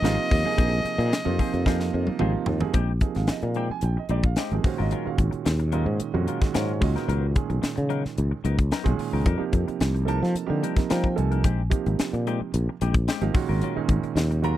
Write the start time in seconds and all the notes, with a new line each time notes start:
Already playing: D#5
0.02 G#1 C3 F3 A#3 C4 D#4 F4 G#4, snare, closed hi-hat
0.18 muted clean electric guitar stroke
0.31 D#2, muted clean electric guitar stroke, kick, open hi-hat
0.44 C3 F3 A#3 D#4 G#4, muted fretless electric bass stroke
0.57 A#1 F3 C4 D#4 G#4, kick, closed hi-hat
0.85 muted fretless electric bass stroke, muted clean electric guitar stroke, closed hi-hat
0.98 A#2 C4 D#4 G#4, closed hi-hat
1.13 snare, closed hi-hat
1.25 F2 C3 F3 A#3 D#4 F4
1.39 F3 C4 D#4 G#4, muted fretless electric bass stroke, kick, open hi-hat
1.54 F2, closed hi-hat
1.66 C3 F3 A#3 C4 D#4 F4 G#4, kick, snare
1.80 muted clean electric guitar stroke, snare
1.93 F2, muted clean electric guitar stroke
2.07 muted fretless electric bass stroke, high tom
2.19 G#1 C3 F3 A#3 C4 D#4 F4 G#4, mid tom
2.34 muted clean electric guitar stroke
2.46 D#2, muted clean electric guitar stroke, floor tom
2.61 C3 F3 A#3 D#4 G#4, muted fretless electric bass stroke, floor tom
2.74 A#1 G#3 C4 D#4 G4, kick, closed hi-hat
3.01 C3 F3 A#3 D#4 G#4, muted clean electric guitar stroke, kick, closed hi-hat
3.15 G#1 F5, muted clean electric guitar stroke, snare, closed hi-hat
3.27 D#5, muted clean electric guitar stroke, muted fretless electric bass stroke, snare, closed hi-hat
3.42 A#2 F5, muted clean electric guitar stroke, closed hi-hat
3.54 G#3 C4 D#4 G4 G5, closed hi-hat
3.70 G#5, muted fretless electric bass stroke, muted clean electric guitar stroke
3.81 A#1 G5, closed hi-hat
3.97 D#5, muted clean electric guitar stroke
4.09 A#1 G#3 C4 D#4 G4 D5, closed hi-hat
4.23 F5, muted clean electric guitar stroke, kick, closed hi-hat
4.36 G#3 C4 D#4 G4 D#5, snare, closed hi-hat
4.51 G#1 C3 F3 A#3 D#4 G#4, closed hi-hat
4.64 A#2 D#3 G#3 C#4 F#4 C5, muted clean electric guitar stroke, kick, open hi-hat
4.78 G#1 C#4 F4 A#4 D#5
4.91 F#3 C#4 F4 A#4 C#5, closed hi-hat
5.05 A#2 D#3 G#3 C#4 F#4 F5, muted fretless electric bass stroke
5.18 G#1, muted clean electric guitar stroke, kick, closed hi-hat
5.31 muted clean electric guitar stroke, muted fretless electric bass stroke, closed hi-hat
5.45 D#2, muted clean electric guitar stroke, snare, closed hi-hat
5.60 muted clean electric guitar stroke, closed hi-hat
5.72 A#2 D#3 F#3 G#3 C#4 D#4 F4 A#4 D#5, closed hi-hat
5.86 G#2
6.00 muted fretless electric bass stroke, closed hi-hat
6.14 F2 A#2 D#3 G#3 C#4 F#4, muted clean electric guitar stroke
6.27 F#3 C#4 F4 A#4, closed hi-hat
6.41 A#2 D#3 G#3 C#4 F#4, muted fretless electric bass stroke, kick, snare, closed hi-hat
6.54 G#2 F#3 C#4 F4 A#4 C#5, snare, closed hi-hat
6.81 C#2 A#2 D#3 G#3 C#4 F#4 D#5, muted clean electric guitar stroke, kick, open hi-hat
6.96 B3 D#4 A#4, snare, closed hi-hat
7.08 C#2 F#3 B3 D#4 A#4, closed hi-hat
7.35 A#2 D#3 G#3 C#4 G#4, muted clean electric guitar stroke, kick, closed hi-hat
7.50 B1, muted clean electric guitar stroke, closed hi-hat
7.62 muted clean electric guitar stroke, muted fretless electric bass stroke, snare, closed hi-hat
7.76 C#3, muted clean electric guitar stroke, closed hi-hat
7.89 F#3 B3 D#4 A#4, closed hi-hat
8.04 muted clean electric guitar stroke, muted fretless electric bass stroke, snare
8.18 C#2, closed hi-hat
8.31 muted clean electric guitar stroke
8.44 C#2 F#3 B3 D#4 A#4, closed hi-hat
8.59 muted clean electric guitar stroke, kick, closed hi-hat
8.72 F#3 B3 D#4 A#4, snare, closed hi-hat
8.84 B1 A#2 D#3 G#3 C#4 G#4, kick, closed hi-hat
8.99 muted clean electric guitar stroke, open hi-hat
9.13 C#2 B3 D#4 A#4
9.26 F2 G3 D4 D#4 A#4, kick, closed hi-hat
9.37 C3 F3 A#3 D#4 G4, muted fretless electric bass stroke
9.53 F2, muted clean electric guitar stroke, kick, closed hi-hat
9.68 muted clean electric guitar stroke, muted fretless electric bass stroke, closed hi-hat
9.80 C2, muted clean electric guitar stroke, snare, closed hi-hat
9.95 muted clean electric guitar stroke, closed hi-hat
10.05 C3 F3 G3 A#3 D4 D#4 A4 A#4 A5, closed hi-hat
10.22 F3, muted clean electric guitar stroke, snare
10.35 muted fretless electric bass stroke, closed hi-hat
10.46 C3 D3 F3 A#3 D#4 G4, muted clean electric guitar stroke
10.63 G3 D4 D#4 A#4, closed hi-hat
10.76 C3 F3 A#3 D#4 A#4, muted fretless electric bass stroke, muted clean electric guitar stroke, kick, snare, closed hi-hat
10.90 F3 G3 D4 D#4 A#4 G5, snare, closed hi-hat
11.04 kick
11.16 C2 C3 F3 A#3 D#4 A4 G#5, muted clean electric guitar stroke, closed hi-hat
11.31 D4 D#4 A#4, closed hi-hat
11.44 A#1 G#3 C4 D#4 G4, kick, closed hi-hat
11.70 C3 F3 A#3 D#4 G4, muted clean electric guitar stroke, kick, closed hi-hat
11.86 G#1, muted clean electric guitar stroke, closed hi-hat
11.99 muted clean electric guitar stroke, snare, closed hi-hat
12.13 A#2, muted clean electric guitar stroke, closed hi-hat
12.27 G#3 C4 D#4 G4, closed hi-hat
12.41 muted fretless electric bass stroke, muted clean electric guitar stroke
12.54 A#1, closed hi-hat
12.69 muted clean electric guitar stroke
12.81 A#1 G#3 C4 D#4 G4, closed hi-hat
12.94 muted clean electric guitar stroke, kick, closed hi-hat
13.08 G#3 C4 D#4 G4, snare, closed hi-hat
13.21 G#1 C3 F3 A#3 D#4 G4, closed hi-hat
13.34 A#2 D#3 G#3 C#4 F#4, muted clean electric guitar stroke, kick, open hi-hat
13.49 G#1 C#4 F4 A#4
13.61 F#3 C#4 F4 A#4, closed hi-hat
13.76 A#2 D#3 G#3 C#4 D#4, muted fretless electric bass stroke
13.88 G#1, muted clean electric guitar stroke, kick, closed hi-hat
14.03 muted fretless electric bass stroke, muted clean electric guitar stroke, closed hi-hat
14.16 D#2, muted clean electric guitar stroke, snare, closed hi-hat
14.31 muted clean electric guitar stroke, closed hi-hat
14.42 A#2 D#3 F#3 G#3 C#4 F4 F#4 A#4 A#5, closed hi-hat